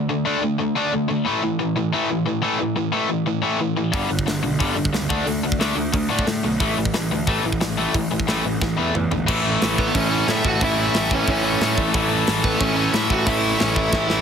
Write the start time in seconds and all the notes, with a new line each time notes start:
0.09 D3 A3
0.25 D3 A3 D4
0.42 D3 A3
0.58 D3 A3
0.76 D3 A3 D4
0.92 D3 A3
1.08 D3 A3
1.25 A2 E3 A3
1.43 A2 E3
1.59 A2 E3
1.76 A2 E3
1.93 A2 E3 A3
2.09 A2 E3
2.26 A2 E3
2.42 A2 E3 A3
2.59 A2 E3
2.76 A2 E3
2.92 A2 E3 A3
3.09 A2 E3
3.26 A2 E3
3.42 A2 E3 A3
3.60 A2 E3
3.77 A2 E3
3.92 G1 G2 D3 G3, kick, open hi-hat
4.09 G1 G2 D3
4.19 kick
4.26 G1 G2 D3, snare, open hi-hat
4.43 B1 G2 D3
4.59 G1 G2 D3 G3, kick, open hi-hat
4.76 G1 G2 D3
4.85 kick
4.93 C#2 G2 D3, snare, open hi-hat
5.09 D2 D3 A3 D4, kick
5.26 D2 D3 A3, open hi-hat
5.43 D2 D3 A3
5.52 kick
5.59 D2 D3 A3 D4, snare, open hi-hat
5.75 D2 D3 A3
5.93 D2 D3 A3, kick, open hi-hat
6.09 A2 D3 A3 D4
6.19 kick
6.26 A2 D3 A3, snare, open hi-hat
6.43 B1 D3 A3
6.60 A1 A2 E3 A3, kick, open hi-hat
6.77 A1 A2 E3
6.85 kick
6.94 A1 A2 E3, snare, open hi-hat
7.11 D2 A2 E3
7.27 A1 A2 E3 A3, kick, open hi-hat
7.44 A1 A2 E3
7.53 kick
7.60 A1 A2 E3, snare, open hi-hat
7.77 A2 E3 A3
7.94 A1 A2 E3, kick, open hi-hat
8.11 A1 A2 E3
8.20 kick
8.27 A1 A2 E3 A3, snare, open hi-hat
8.44 A1 A2 E3
8.61 A1 A2 E3, kick, snare
8.77 E2 A2 E3 A3
8.94 E2 A2 E3, mid tom
9.11 G1 A2 E3, floor tom
9.26 A1 A2 E3 A3 C#4 E4, kick, crash
9.62 A1, snare, open hi-hat
9.78 B3 B4, kick
9.95 A1 C#4 C#5, kick, open hi-hat
10.09 A2 E3 A3
10.27 A2 E3 A3 E4 E5, snare, open hi-hat
10.44 A1 A2 E3 A3 F#4 F#5, kick
10.60 A1 A2 E3 A3 C#4 E4, kick, open hi-hat
10.64 E5
10.94 A1 E4 E5, snare, open hi-hat
11.11 C#4 C#5, kick
11.27 A1 C#4 C#5, kick, open hi-hat
11.43 A2 E3 A3
11.60 A2 E3 A3, snare, open hi-hat
11.77 A1 A2 E3 A3, kick
11.93 A1 A2 E3 A3 C#4 E4, kick, open hi-hat
12.27 A1, snare, open hi-hat
12.44 B3 B4, kick
12.60 A1 C#4 C#5, kick, open hi-hat
12.76 A2 E3 A3
12.92 A2 E3 A3 E4 E5, snare, open hi-hat
13.10 A1 A2 E3 A3 F#4 F#5, kick
13.26 A1 A2 E3 A3 C#4 E4 E5, kick, open hi-hat
13.60 A1 C#4 C#5, snare, open hi-hat
13.75 E4 E5, kick
13.93 A1 E4 E5, kick, snare
14.08 A2 E3 A3, snare